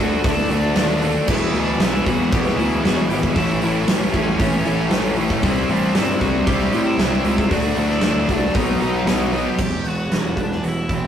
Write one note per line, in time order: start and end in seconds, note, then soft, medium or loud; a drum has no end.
0.00 0.19 D2 loud
0.00 0.22 D3 medium
0.00 0.24 D3 loud
0.00 0.23 A3 loud
0.00 0.25 A3 loud
0.00 0.24 D4 loud
0.00 0.25 D4 loud
0.00 0.22 F#4 medium
0.00 0.26 F#4 loud
0.00 0.22 F#5 loud
0.24 0.45 D2 loud
0.24 0.49 D3 medium
0.24 0.50 A3 medium
0.24 0.50 D4 loud
0.24 0.50 E4 medium
0.24 0.50 F#4 loud
0.24 kick loud
0.24 open hi-hat medium
0.29 0.54 E5 medium
0.37 snare soft
0.50 0.71 D2 medium
0.50 0.75 D3 medium
0.50 0.76 A3 medium
0.50 0.77 D4 loud
0.50 0.77 F#4 loud
0.50 open hi-hat medium
0.55 1.02 D4 medium
0.55 1.02 D5 medium
0.75 1.16 D#2 loud
0.75 1.01 D3 medium
0.75 1.02 A3 medium
0.75 1.02 D4 loud
0.75 1.02 F#4 medium
0.75 snare loud
0.75 open hi-hat loud
1.02 1.27 D3 medium
1.02 1.27 A3 medium
1.02 1.28 D4 medium
1.02 1.28 F#4 loud
1.02 open hi-hat medium
1.28 1.48 E1 loud
1.28 1.54 E2 loud
1.28 1.55 B2 loud
1.28 1.54 E3 medium
1.28 1.54 G3 loud
1.28 1.55 B3 loud
1.28 1.55 E4 loud
1.28 1.54 E4 medium
1.28 kick loud
1.28 crash loud
1.35 1.59 E5 loud
1.52 1.73 D2 medium
1.52 1.81 E2 medium
1.52 1.81 B2 loud
1.52 1.80 E3 medium
1.52 1.81 G3 medium
1.52 1.82 B3 medium
1.52 1.80 D4 medium
1.52 1.82 E4 loud
1.52 open hi-hat medium
1.58 1.83 D5 medium
1.78 1.99 B1 loud
1.78 2.06 E2 medium
1.78 2.07 E3 medium
1.78 2.06 G3 medium
1.78 2.08 B3 medium
1.78 2.05 E4 medium
1.78 2.06 E5 medium
1.78 snare loud
1.78 open hi-hat medium
1.82 2.06 B2 medium
1.82 2.08 E4 medium
2.05 2.27 E1 loud
2.05 2.33 E2 medium
2.05 2.33 B2 loud
2.05 2.31 E3 loud
2.05 2.31 G3 loud
2.05 2.31 B3 loud
2.05 2.33 E4 loud
2.05 2.30 F#4 medium
2.05 2.33 F#5 loud
2.05 kick medium
2.05 open hi-hat medium
2.32 2.52 E1 medium
2.32 2.58 E2 medium
2.32 2.58 B2 medium
2.32 2.57 E3 medium
2.32 2.57 G3 medium
2.32 2.58 B3 medium
2.32 2.59 E4 medium
2.32 2.57 G4 medium
2.32 2.56 G5 loud
2.32 kick loud
2.32 open hi-hat medium
2.47 snare soft
2.56 2.78 D2 medium
2.56 2.84 E2 medium
2.56 2.85 B2 loud
2.56 2.83 E3 medium
2.56 2.83 G3 loud
2.56 2.84 B3 loud
2.56 2.82 E4 medium
2.56 2.85 E4 loud
2.56 2.84 E5 medium
2.56 open hi-hat medium
2.83 3.04 E1 loud
2.83 3.10 E2 medium
2.83 3.11 B2 loud
2.83 3.09 E3 medium
2.83 3.09 G3 medium
2.83 3.09 B3 loud
2.83 3.11 E4 loud
2.83 3.08 F#4 medium
2.83 3.09 F#5 loud
2.83 snare loud
2.83 open hi-hat medium
3.09 3.30 G#1 loud
3.09 3.35 E2 medium
3.09 3.36 B2 medium
3.09 3.36 E3 medium
3.09 3.35 G3 medium
3.09 3.35 B3 medium
3.09 3.37 E4 medium
3.09 3.17 G4 medium
3.09 3.16 G5 medium
3.09 open hi-hat medium
3.23 kick medium
3.35 3.56 A1 loud
3.35 3.60 A2 loud
3.35 3.61 E3 loud
3.35 3.61 A3 medium
3.35 3.61 C#4 loud
3.35 3.84 E4 medium
3.35 3.63 E4 loud
3.35 3.84 E5 medium
3.35 kick loud
3.35 open hi-hat medium
3.61 3.83 A1 loud
3.61 3.85 A2 medium
3.61 3.87 E3 medium
3.61 3.88 A3 medium
3.61 3.87 C#4 medium
3.61 3.88 E4 medium
3.61 open hi-hat medium
3.87 4.08 A1 loud
3.87 4.12 A2 medium
3.87 4.13 E3 medium
3.87 4.14 A3 medium
3.87 4.14 C#4 medium
3.87 4.14 E4 medium
3.87 snare loud
3.87 open hi-hat loud
4.13 4.34 A1 loud
4.13 4.37 A2 loud
4.13 4.39 E3 loud
4.13 4.39 A3 loud
4.13 4.39 C#4 loud
4.13 4.38 C#4 medium
4.13 4.40 E4 loud
4.13 4.37 C#5 loud
4.13 kick medium
4.13 open hi-hat medium
4.38 4.59 A1 loud
4.38 4.64 A2 medium
4.38 4.66 E3 loud
4.38 4.67 A3 medium
4.38 4.88 C#4 medium
4.38 4.66 C#4 medium
4.38 4.67 E4 medium
4.38 4.87 C#5 loud
4.38 kick loud
4.38 open hi-hat medium
4.65 4.86 A1 medium
4.65 4.90 A2 medium
4.65 4.91 E3 loud
4.65 4.93 A3 loud
4.65 4.92 C#4 loud
4.65 4.93 E4 loud
4.65 open hi-hat medium
4.90 5.31 A1 medium
4.90 5.16 A2 medium
4.90 5.17 E3 medium
4.90 5.18 A3 medium
4.90 5.18 C#4 loud
4.90 5.19 E4 medium
4.90 snare loud
4.90 open hi-hat medium
5.16 5.42 A2 medium
5.16 5.43 E3 medium
5.16 5.44 A3 medium
5.16 5.43 C#4 medium
5.16 5.44 E4 medium
5.16 open hi-hat medium
5.30 kick medium
5.42 5.63 C2 loud
5.42 5.68 C3 loud
5.42 5.69 G3 loud
5.42 5.69 C4 loud
5.42 5.70 E4 loud
5.42 5.69 E4 medium
5.42 kick loud
5.42 open hi-hat medium
5.48 5.73 E5 loud
5.69 5.90 A1 loud
5.69 5.94 C3 medium
5.69 5.94 G3 medium
5.69 5.95 C4 loud
5.69 5.95 D4 medium
5.69 5.96 E4 loud
5.69 5.97 D5 medium
5.69 open hi-hat medium
5.95 6.15 G1 medium
5.95 6.20 C3 medium
5.95 6.21 G3 medium
5.95 6.22 C4 loud
5.95 6.20 E4 medium
5.95 6.22 E4 medium
5.95 6.21 E5 loud
5.95 snare loud
5.95 open hi-hat medium
6.20 6.41 C2 loud
6.20 6.46 C3 medium
6.20 6.46 G3 loud
6.20 6.47 C4 loud
6.20 6.48 E4 loud
6.20 6.45 F#4 medium
6.20 6.46 F#5 loud
6.20 kick medium
6.20 open hi-hat medium
6.46 6.67 C2 loud
6.46 6.71 C3 medium
6.46 6.72 G3 medium
6.46 6.72 C4 medium
6.46 6.73 E4 medium
6.46 6.83 G4 medium
6.46 6.86 G5 loud
6.46 kick loud
6.46 open hi-hat medium
6.59 snare soft
6.72 6.93 A2 medium
6.72 6.98 C3 loud
6.72 6.99 G3 loud
6.72 6.99 C4 loud
6.72 7.00 E4 loud
6.72 open hi-hat medium
6.86 7.35 E4 medium
6.86 7.38 E5 loud
6.98 7.18 C2 loud
6.98 7.24 C3 medium
6.98 7.25 G3 loud
6.98 7.25 C4 loud
6.98 7.26 E4 loud
6.98 snare loud
6.98 open hi-hat medium
7.23 7.44 C#2 medium
7.23 7.50 C3 medium
7.23 7.50 G3 medium
7.23 7.50 C4 medium
7.23 open hi-hat medium
7.28 7.51 E4 loud
7.38 7.51 E4 medium
7.38 7.51 E5 medium
7.38 kick medium
7.50 7.71 D2 loud
7.50 7.76 D3 loud
7.50 7.76 F#3 loud
7.50 7.77 A3 medium
7.50 7.77 D4 loud
7.50 7.88 F#4 medium
7.50 7.88 F#5 loud
7.50 kick loud
7.50 open hi-hat medium
7.76 7.97 D2 medium
7.76 8.02 D3 medium
7.76 8.02 F#3 medium
7.76 8.03 A3 medium
7.76 8.04 D4 medium
7.76 open hi-hat medium
7.89 8.26 E4 medium
7.89 8.26 E5 medium
7.89 snare soft
8.01 8.23 D2 loud
8.01 8.27 D3 medium
8.01 8.28 F#3 medium
8.01 8.29 A3 medium
8.01 snare loud
8.01 open hi-hat medium
8.05 8.29 D4 medium
8.28 8.49 C2 loud
8.28 8.53 D3 medium
8.28 8.54 F#3 loud
8.28 8.54 A3 loud
8.28 8.53 D4 medium
8.28 8.54 D4 loud
8.28 8.53 D5 medium
8.28 kick medium
8.28 open hi-hat medium
8.54 8.75 B1 loud
8.54 8.78 B2 loud
8.54 8.80 F#3 loud
8.54 8.79 B3 medium
8.54 9.08 D#4 medium
8.54 8.80 D#4 loud
8.54 9.08 D#5 medium
8.54 kick loud
8.54 open hi-hat medium
8.80 9.00 B1 medium
8.80 9.04 B2 medium
8.80 9.06 F#3 loud
8.80 9.06 B3 loud
8.80 9.06 D#4 loud
8.80 open hi-hat medium
9.05 9.46 B1 medium
9.05 9.31 B2 medium
9.05 9.32 F#3 medium
9.05 9.32 B3 medium
9.05 9.32 D#4 medium
9.05 9.45 D#4 medium
9.05 snare loud
9.05 open hi-hat medium
9.09 9.45 D#5 medium
9.32 9.57 B2 medium
9.32 9.58 F#3 medium
9.32 9.58 B3 medium
9.32 9.58 D#4 loud
9.32 open hi-hat medium
9.46 9.82 G4 medium
9.46 9.87 G5 loud
9.59 9.82 E1 medium
9.59 10.90 E2 medium
9.59 kick loud
9.59 crash loud
9.84 10.08 E1 medium
9.84 10.36 B3 medium
9.84 10.11 F#4 medium
9.84 open hi-hat medium
9.89 10.13 F#5 medium
10.11 10.34 E1 medium
10.11 11.07 G3 medium
10.11 10.37 F#4 medium
10.11 10.40 F#5 medium
10.11 snare loud
10.11 open hi-hat medium
10.37 10.60 E1 medium
10.37 11.07 B3 medium
10.37 kick medium
10.37 open hi-hat soft
10.41 10.64 D4 medium
10.41 10.64 D5 medium
10.52 snare soft
10.63 10.86 E1 medium
10.63 11.07 F#4 medium
10.63 open hi-hat medium
10.68 10.90 E4 medium
10.68 10.92 E5 medium
10.89 11.07 E1 medium
10.89 11.07 E4 medium
10.89 kick medium
10.89 open hi-hat medium
10.93 11.07 C4 medium
10.93 11.07 C5 medium